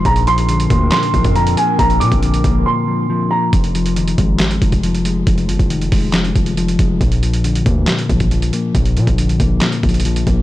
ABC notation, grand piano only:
X:1
M:4/4
L:1/8
Q:1/4=138
K:Fdor
V:1 name="Grand piano"
b c'3 c'2 b a | b d'3 c'3 b | z8 | z8 |
z8 | z8 |]